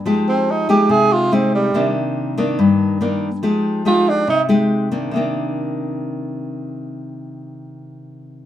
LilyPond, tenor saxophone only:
\new Staff \with { instrumentName = "Tenor saxophone" } { \time 4/4 \key c \minor \tempo 4 = 142 r8 c'8 ees'8 g'8 aes'8 f'8 c'8 g8~ | g8 r2. r8 | r4 f'8 d'8 ees'8 r4. | r1 |
r1 | }